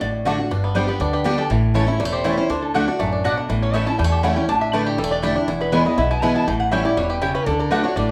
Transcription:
0.01 A1 A2 D5
0.25 D3 A3 D4 F#4 D5 F#5
0.38 D4 F#4
0.51 G1 G2 D4
0.64 B3
0.75 G3 B3 D4 G4 C5 D5 G5
0.87 B3 D4 G4 B4
1.00 D2 D3 D4
1.13 G4 B4
1.24 G3 B3 D4 G4 D5 G5
1.37 D4 G4 A4
1.50 A1 A2 E3
1.74 E3 A3 C#4 E4 C#5 A5
1.87 C#4 E4
2.00 E1 E2 G3 C#5
2.05 A3
2.12 G4 C5
2.24 E3 A3 C#4 E4 C#5 A5
2.37 C#4 E4 C5
2.50 D2 D3 D4
2.62 A4
2.74 D3 A3 D4 F#4 D5 F#5
2.88 D4 F#4
2.99 A1 F#2 A3 D5
3.12 D4
3.24 B2 A3 D4 F#4 D5 F#5
3.37 D4
3.49 A1 A2 E3
3.62 C#4 C#5
3.73 E3 A3 C#4 E4 C#5 E5 A5
3.86 C#4 E4 A5
3.98 E2 G3 G5
4.04 A3
4.11 G4 A5
4.23 E3 A3 C#4 E4 C#5 F#5 A5
4.36 C#4 E4 G5
4.49 A1 A2 D4 A5
4.61 D4 E5
4.73 D3 A3 D4 E4 B4 D5 A5
4.86 G4
4.98 E1 E2 G3 A4
5.04 A3
5.11 D4 D5
5.22 D3 A3 D4 E4 G4 D5 A5
5.36 D4 E4
5.48 E1 E2 E4
5.61 B3 B4
5.72 E3 G#3 B3 E4 B4 C#5 G#5
5.85 B3 E4 D#5
5.98 B1 B2 E4 E5
6.11 E4 G#5
6.22 E3 G#3 B3 E4 B4 G#5 B5
6.35 E4 A5
6.48 A1 A2 E3 G5
6.60 F#5
6.71 E3 G3 A3 C#4 E4 C#5 E5 G5
6.85 C#4 E4 D5
6.97 E1 B2 G3 C#5
7.10 G4 B4
7.22 C#3 A3 E4 G4 C#5 G5
7.35 C#4 B4
7.46 D2 D3 D4 A4
7.59 D4 A#4
7.71 D3 A3 D4 F#4 B4 D5 F#5
7.84 D4 F#4 C#5
7.96 A1 A2 D4 D5

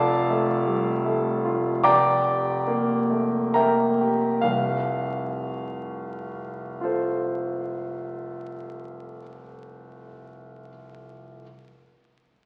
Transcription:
Already playing: F1 F4 A4 D5 F5 A5
0.30 A3
0.67 G3
1.06 A3
1.45 F4
1.84 F1 D5 G5 A#5 D6
2.26 G4
2.67 A#3
3.10 A3
3.54 A#3 A#4 E5 G5 A#5
4.01 G4
4.41 F1 C2 F5
6.81 F4 A4 C5

